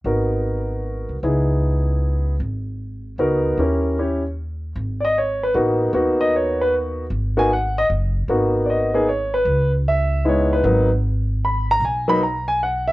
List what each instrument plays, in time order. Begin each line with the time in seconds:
0.04 upright bass G#1, grand piano B3 D#4 F#4 A#4
1.09 upright bass C2
1.23 upright bass C#2, grand piano B3 D#4 E4 G#4
2.40 upright bass G#1
3.18 upright bass C#2, grand piano B3 D#4 F#4 A#4
3.58 upright bass D#2, grand piano C#4 E4 G4 A#4
3.99 grand piano C#4 E4 G4 C#5
4.76 upright bass G#1
5.00 grand piano D5
5.05 grand piano D#5
5.18 grand piano C#5
5.43 grand piano B4
5.54 upright bass A1, grand piano A#3 B3 D#4 F#4
5.93 upright bass D#2, grand piano A#3 B3 D#4 F#4
6.21 grand piano D#5
6.36 grand piano C#5
6.62 grand piano B4
7.10 upright bass G#1
7.37 grand piano A#3 B3 D#4 F#4 G#5
7.53 grand piano F#5
7.78 grand piano D#5
7.90 upright bass F#1
8.28 upright bass G#1, grand piano A#3 B3 D#4 F#4
8.65 grand piano D5
8.70 grand piano D#5
8.94 grand piano A#3 B3 D#4 G#4
9.09 grand piano C#5
9.34 grand piano B4
9.45 upright bass C#2
9.88 grand piano E5
10.25 grand piano G#3 B3 D#4 E4 C#5
10.53 grand piano B4
10.64 upright bass G#1, grand piano F#3 A#3 B3 D#4
11.45 grand piano B5
11.71 grand piano A#5
11.80 upright bass B1
11.85 grand piano G#5
12.08 grand piano F#3 A#3 B3 D#4 B5
12.23 grand piano A#5
12.48 grand piano G#5
12.63 grand piano F#5
12.88 grand piano E5